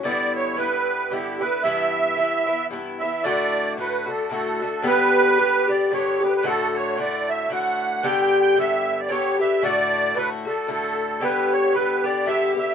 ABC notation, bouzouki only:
X:1
M:3/4
L:1/8
Q:"Swing" 1/4=113
K:D
V:1 name="Bouzouki"
[G,,D,B,E]2 [G,,D,B,E]2 [G,,D,B,E] [D,B,E] | [G,,E,B,E]2 [G,,E,B,E] [E,B,E] [G,,E,B,E] [E,B,E] | [A,,D,A,F]2 [A,,D,A,F] [D,A,F] [A,,D,A,F] [D,A,F] | [G,,D,B,G]2 [G,,D,B,G] [D,B,G] [G,,D,B,G] [D,B,G] |
[A,,D,A,F]2 [A,,D,A,F]2 [A,,D,A,F]2 | [G,,D,B,G]2 [G,,D,B,G]2 [G,,D,B,G] [D,B,G] | [A,,D,A,F]2 [A,,D,A,F] [D,A,F] [A,,D,A,F]2 | [G,,D,B,G]2 [G,,D,B,G] [D,B,G] [G,,D,B,G] [D,B,G] |]